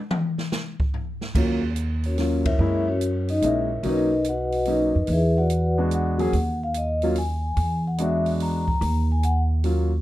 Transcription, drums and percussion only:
0.11 mid tom loud
0.38 snare medium
0.52 snare medium
0.52 hi-hat pedal medium
0.80 kick medium
0.94 floor tom medium
1.21 snare soft
1.35 kick medium
1.35 crash medium
1.76 closed hi-hat soft
2.04 open hi-hat soft
2.18 snare soft
2.18 open hi-hat soft
2.45 kick medium
2.45 ride medium
3.01 closed hi-hat soft
3.28 open hi-hat soft
3.42 closed hi-hat soft
3.83 kick soft
3.83 open hi-hat soft
4.25 closed hi-hat soft
4.52 open hi-hat soft
4.65 open hi-hat soft
5.07 kick soft
5.07 open hi-hat soft
5.50 closed hi-hat soft
5.91 closed hi-hat soft
6.19 open hi-hat soft
6.33 kick soft
6.33 open hi-hat soft
6.74 closed hi-hat soft
7.02 open hi-hat soft
7.16 open hi-hat soft
7.57 kick soft
7.57 open hi-hat soft
7.98 closed hi-hat medium
8.26 open hi-hat soft
8.40 open hi-hat soft
8.68 kick medium
8.81 kick soft
8.81 open hi-hat soft
9.23 closed hi-hat soft
9.64 open hi-hat soft

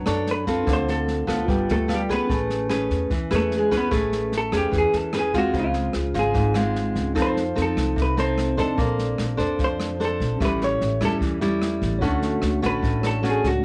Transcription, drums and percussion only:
0.06 cross-stick medium
0.06 snare soft
0.26 snare soft
0.47 kick soft
0.47 snare soft
0.67 kick medium
0.67 cross-stick medium
0.67 snare soft
0.88 snare soft
1.08 snare soft
1.28 kick soft
1.28 cross-stick medium
1.28 snare soft
1.48 kick medium
1.48 snare soft
1.69 snare soft
1.89 cross-stick medium
1.89 snare soft
2.09 kick soft
2.09 snare soft
2.29 kick medium
2.29 snare soft
2.50 snare soft
2.70 cross-stick medium
2.70 snare soft
2.90 kick soft
2.90 snare soft
3.10 kick medium
3.10 snare soft
3.31 cross-stick medium
3.31 snare soft
3.51 snare soft
3.71 kick soft
3.71 snare soft
3.92 kick medium
3.92 cross-stick medium
3.92 snare soft
4.12 snare soft
4.32 snare soft
4.52 kick soft
4.52 cross-stick medium
4.52 snare soft
4.73 kick medium
4.73 snare soft
4.93 snare soft
5.13 cross-stick medium
5.13 snare soft
5.33 kick soft
5.33 snare soft
5.53 kick medium
5.53 snare soft
5.73 snare soft
5.93 cross-stick medium
5.93 snare soft
6.14 kick soft
6.14 snare soft
6.34 kick medium
6.34 snare soft
6.54 cross-stick medium
6.54 snare soft
6.75 snare soft
6.95 kick soft
6.95 snare soft
7.16 kick medium
7.16 cross-stick medium
7.16 snare soft
7.36 snare soft
7.57 snare soft
7.77 kick soft
7.77 cross-stick medium
7.77 snare soft
7.97 kick medium
7.97 snare soft
8.17 snare soft
8.38 cross-stick medium
8.38 snare soft
8.58 kick soft
8.58 snare soft
8.78 kick medium
8.78 snare soft
8.99 snare soft
9.18 cross-stick medium
9.18 snare soft
9.39 kick soft
9.39 snare soft
9.59 kick medium
9.59 snare soft
9.80 cross-stick medium
9.80 snare soft
10.00 snare soft
10.20 kick soft
10.20 snare soft
10.40 kick medium
10.40 cross-stick medium
10.40 snare soft
10.61 snare soft
10.81 snare soft
11.01 kick soft
11.01 cross-stick medium
11.01 snare soft
11.21 kick medium
11.21 snare soft
11.41 snare soft
11.61 cross-stick medium
11.61 snare soft
11.81 kick soft
11.81 snare soft
12.02 kick medium
12.02 snare soft
12.22 snare soft
12.42 cross-stick medium
12.42 snare soft
12.62 kick soft
12.62 snare soft
12.83 kick medium
12.83 snare soft
13.03 cross-stick medium
13.03 snare soft
13.24 snare soft
13.44 kick soft
13.44 snare soft

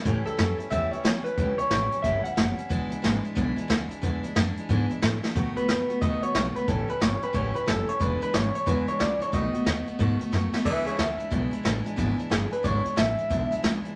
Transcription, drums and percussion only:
0.05 kick loud
0.05 closed hi-hat medium
0.27 closed hi-hat medium
0.38 snare loud
0.38 closed hi-hat medium
0.60 closed hi-hat medium
0.72 kick loud
0.72 closed hi-hat medium
0.93 closed hi-hat medium
1.05 snare loud
1.05 closed hi-hat medium
1.26 closed hi-hat medium
1.38 kick loud
1.38 closed hi-hat medium
1.59 closed hi-hat medium
1.71 snare loud
1.71 closed hi-hat medium
1.92 closed hi-hat medium
2.04 kick loud
2.04 closed hi-hat medium
2.25 closed hi-hat medium
2.37 snare loud
2.37 closed hi-hat loud
2.58 closed hi-hat medium
2.70 kick loud
2.70 closed hi-hat medium
2.92 closed hi-hat medium
3.04 snare loud
3.04 closed hi-hat medium
3.25 closed hi-hat medium
3.37 kick loud
3.37 closed hi-hat medium
3.58 closed hi-hat medium
3.70 snare loud
3.70 closed hi-hat medium
3.91 closed hi-hat medium
4.03 kick loud
4.03 closed hi-hat medium
4.24 closed hi-hat medium
4.36 snare loud
4.36 closed hi-hat medium
4.57 closed hi-hat medium
4.69 kick loud
4.69 closed hi-hat medium
4.90 closed hi-hat medium
5.02 snare loud
5.02 closed hi-hat loud
5.24 snare medium
5.35 kick loud
5.35 closed hi-hat medium
5.57 closed hi-hat medium
5.68 snare loud
5.68 closed hi-hat medium
5.90 closed hi-hat medium
6.02 kick loud
6.02 closed hi-hat medium
6.23 closed hi-hat medium
6.35 snare loud
6.35 closed hi-hat medium
6.56 closed hi-hat medium
6.68 kick loud
6.68 closed hi-hat medium
6.89 closed hi-hat medium
7.01 snare loud
7.01 closed hi-hat medium
7.22 closed hi-hat medium
7.34 kick loud
7.34 closed hi-hat medium
7.55 closed hi-hat medium
7.67 snare loud
7.67 closed hi-hat medium
7.88 closed hi-hat medium
8.00 kick loud
8.00 closed hi-hat medium
8.22 closed hi-hat medium
8.34 snare loud
8.34 closed hi-hat medium
8.55 closed hi-hat medium
8.67 kick loud
8.67 closed hi-hat medium
8.88 closed hi-hat medium
9.00 snare loud
9.00 closed hi-hat medium
9.21 closed hi-hat medium
9.33 kick loud
9.33 closed hi-hat medium
9.54 closed hi-hat medium
9.66 snare loud
9.66 closed hi-hat medium
9.87 closed hi-hat medium
9.99 kick loud
9.99 closed hi-hat medium
10.21 closed hi-hat medium
10.33 snare medium
10.54 snare loud
10.65 kick loud
10.65 crash loud
10.87 closed hi-hat medium
10.99 snare loud
10.99 closed hi-hat medium
11.20 closed hi-hat medium
11.32 kick loud
11.32 closed hi-hat medium
11.53 closed hi-hat medium
11.65 snare loud
11.65 closed hi-hat medium
11.86 closed hi-hat medium
11.98 kick loud
11.98 closed hi-hat medium
12.19 closed hi-hat medium
12.31 snare loud
12.31 closed hi-hat medium
12.52 closed hi-hat medium
12.64 kick loud
12.64 closed hi-hat medium
12.85 closed hi-hat medium
12.97 snare loud
12.97 closed hi-hat medium
13.18 closed hi-hat medium
13.30 kick loud
13.30 closed hi-hat medium
13.52 closed hi-hat medium
13.64 snare loud
13.64 closed hi-hat medium
13.85 closed hi-hat medium

